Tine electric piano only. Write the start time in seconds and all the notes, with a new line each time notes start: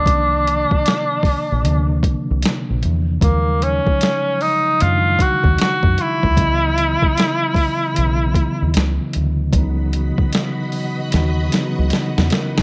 0.04 C3 D#3 F3 A#3
0.09 C#4
0.16 D4
1.62 C3 D3 F3 A#3
1.66 D4
3.20 C#3 F3 F#3 G#3
3.24 D#4
4.79 C#3 D#3 F#3 G#3
4.84 D4
4.90 D#4
6.37 C#3 E3 F#3 B3
6.41 D#5
7.94 C#3 E3 F#3 B3
7.98 E4
9.53 C#3 D#3 F#3 B3
9.58 E3 D#4
11.49 C#3 E3 F#3 B3
11.53 D#4
12.17 C#4 F#4
12.31 E4 A#4
12.56 D#4 G#4